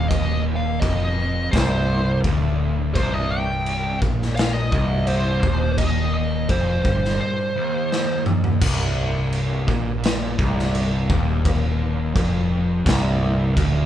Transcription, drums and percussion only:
0.11 kick loud
0.11 crash medium
0.82 kick loud
0.82 crash medium
1.53 kick loud
1.53 snare loud
1.53 crash medium
2.24 kick loud
2.24 crash medium
2.95 kick loud
2.95 crash medium
3.66 crash soft
4.02 kick loud
4.22 snare soft
4.37 snare loud
4.37 crash medium
4.72 kick loud
5.07 crash medium
5.43 kick loud
5.78 kick loud
5.78 crash medium
6.49 kick loud
6.49 crash medium
6.85 kick loud
7.05 snare soft
7.92 snare medium
8.26 mid tom medium
8.44 floor tom medium
8.61 kick loud
8.61 crash loud
8.61 crash medium
9.33 crash medium
9.68 kick loud
10.04 snare loud
10.04 crash medium
10.39 kick loud
10.59 snare soft
10.75 crash medium
11.10 kick loud
11.45 kick loud
11.45 crash medium
12.16 kick loud
12.16 crash medium
12.86 kick loud
12.86 snare loud
12.86 crash medium
13.57 kick loud
13.57 crash medium

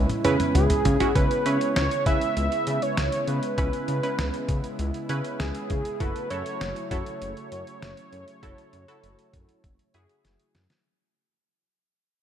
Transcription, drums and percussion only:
0.09 closed hi-hat soft
0.09 high tom medium
0.24 closed hi-hat medium
0.24 mid tom medium
0.40 closed hi-hat medium
0.40 mid tom medium
0.55 closed hi-hat medium
0.55 mid tom medium
0.70 closed hi-hat medium
0.70 mid tom medium
0.85 closed hi-hat medium
0.85 floor tom loud
1.00 closed hi-hat medium
1.00 floor tom medium
1.15 kick medium
1.15 closed hi-hat medium
1.31 closed hi-hat soft
1.46 closed hi-hat medium
1.61 closed hi-hat medium
1.76 snare loud
1.76 closed hi-hat medium
1.91 closed hi-hat medium
2.06 kick loud
2.06 closed hi-hat medium
2.21 closed hi-hat medium
2.37 closed hi-hat medium
2.52 closed hi-hat soft
2.67 closed hi-hat medium
2.82 closed hi-hat soft
2.97 snare loud
2.97 closed hi-hat medium
3.12 closed hi-hat medium
3.28 closed hi-hat medium
3.43 closed hi-hat medium
3.58 kick medium
3.58 closed hi-hat medium
3.73 closed hi-hat soft
3.88 closed hi-hat medium
4.03 closed hi-hat medium
4.19 snare loud
4.19 closed hi-hat medium
4.34 closed hi-hat medium
4.49 kick medium
4.49 closed hi-hat medium
4.64 closed hi-hat soft
4.79 closed hi-hat medium
4.94 closed hi-hat soft
5.09 closed hi-hat medium
5.25 closed hi-hat soft
5.40 snare loud
5.40 closed hi-hat medium
5.55 closed hi-hat medium
5.70 kick medium
5.70 closed hi-hat medium
5.85 closed hi-hat medium
6.00 kick medium
6.00 closed hi-hat medium
6.16 closed hi-hat soft
6.30 closed hi-hat medium
6.46 closed hi-hat medium
6.61 snare loud
6.61 closed hi-hat medium
6.76 closed hi-hat medium
6.91 kick loud
6.91 closed hi-hat medium
7.06 closed hi-hat soft
7.22 closed hi-hat medium
7.37 closed hi-hat soft
7.52 closed hi-hat medium
7.67 closed hi-hat soft
7.82 snare loud
7.82 closed hi-hat medium
7.97 closed hi-hat medium
8.13 closed hi-hat medium
8.28 closed hi-hat medium
8.43 kick medium
8.43 closed hi-hat medium
8.58 closed hi-hat soft
8.73 closed hi-hat medium
8.88 closed hi-hat medium
9.04 closed hi-hat medium
9.19 closed hi-hat medium
9.33 kick medium
9.33 closed hi-hat medium
9.49 closed hi-hat soft
9.64 kick medium
9.64 closed hi-hat medium
9.79 closed hi-hat soft
9.94 closed hi-hat medium
10.09 closed hi-hat soft
10.25 snare medium
10.25 closed hi-hat medium
10.40 closed hi-hat medium
10.55 snare medium
10.55 closed hi-hat medium
10.70 snare medium
10.70 closed hi-hat medium

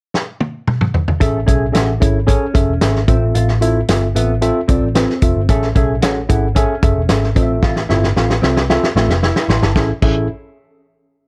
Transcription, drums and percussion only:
0.14 snare medium
0.40 high tom medium
0.68 mid tom medium
0.81 mid tom medium
0.94 floor tom medium
1.08 floor tom medium
1.21 kick loud
1.21 closed hi-hat medium
1.48 kick medium
1.48 closed hi-hat medium
1.75 snare loud
1.75 closed hi-hat loud
2.02 kick loud
2.02 closed hi-hat medium
2.28 kick medium
2.28 closed hi-hat medium
2.55 kick loud
2.55 closed hi-hat medium
2.81 snare medium
2.81 closed hi-hat medium
2.96 snare soft
3.08 kick loud
3.08 closed hi-hat medium
3.35 closed hi-hat medium
3.48 snare soft
3.62 closed hi-hat medium
3.88 snare loud
3.88 closed hi-hat medium
4.16 closed hi-hat medium
4.42 closed hi-hat medium
4.69 kick medium
4.69 closed hi-hat medium
4.95 snare medium
4.95 closed hi-hat medium
5.10 snare soft
5.22 kick medium
5.22 closed hi-hat medium
5.49 kick loud
5.49 closed hi-hat medium
5.62 snare soft
5.75 kick loud
5.75 closed hi-hat medium
6.02 snare loud
6.02 closed hi-hat medium
6.30 kick medium
6.30 closed hi-hat medium
6.56 kick medium
6.56 closed hi-hat medium
6.82 kick loud
6.82 closed hi-hat medium
7.09 snare loud
7.09 closed hi-hat medium
7.24 snare soft
7.36 kick medium
7.36 closed hi-hat medium
7.63 kick loud
7.63 snare medium
7.76 snare medium
7.90 snare medium
8.03 snare soft
8.16 snare medium
8.30 snare medium
8.43 snare medium
8.57 snare medium
8.70 snare medium
8.83 snare medium
8.97 snare medium
9.10 snare medium
9.23 snare medium
9.36 snare medium
9.50 snare loud
9.63 snare medium
9.76 kick medium
9.76 snare medium
10.02 kick loud
10.02 crash medium

